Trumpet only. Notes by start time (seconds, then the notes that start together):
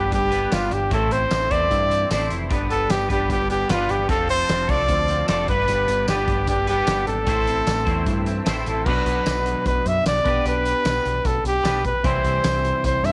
Already playing: G4
0.14 G4
0.53 F4
0.73 G4
0.93 A4
1.13 C5
1.51 D5
2.12 D5
2.71 A4
2.91 G4
3.11 G4
3.31 G4
3.51 G4
3.70 F4
3.91 G4
4.10 A4
4.30 C5
4.70 D5
5.29 D5
5.49 B4
6.09 G4
6.49 G4
6.69 G4
7.08 A4
8.67 A4
8.86 B4
9.67 B4
9.87 E5
10.08 D5
10.48 B4
11.26 A4
11.47 G4
11.86 B4
12.06 C5
12.86 C5
13.05 E5